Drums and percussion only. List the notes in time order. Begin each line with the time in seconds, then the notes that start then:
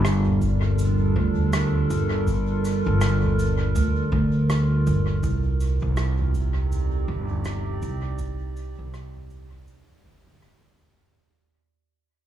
0.05 cross-stick, cabasa
0.26 mid tom
0.42 kick, cabasa
0.78 mid tom, cabasa
1.16 kick
1.37 mid tom
1.53 cross-stick, cabasa
1.90 cabasa
2.27 kick, cabasa
2.65 cabasa
3.01 cross-stick, cabasa
3.23 mid tom
3.39 cabasa
3.76 cabasa
4.12 kick
4.50 cross-stick, cabasa
4.87 mid tom, cabasa
5.23 kick, cabasa
5.60 cabasa
5.82 kick
5.97 cross-stick, cabasa
6.20 mid tom
6.34 kick, cabasa
6.72 mid tom, cabasa
7.08 kick
7.31 mid tom
7.45 cross-stick, cabasa
7.82 cabasa
8.19 kick, cabasa
8.57 cabasa
8.94 cross-stick, cabasa
9.15 mid tom
9.30 cabasa
9.52 kick
9.68 cabasa
9.90 mid tom
10.05 kick
10.42 cross-stick, cabasa
10.79 mid tom, cabasa